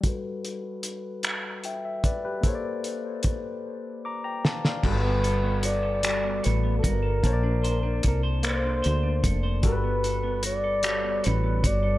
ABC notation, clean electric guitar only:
X:1
M:6/8
L:1/16
Q:3/8=50
K:G
V:1 name="Clean electric guitar"
z12 | z12 | G, B, A B, F A G, B, A B, F A | _B, D c D A c B, D c D A c |
G, B, A B, F A G, B, A B, F A |]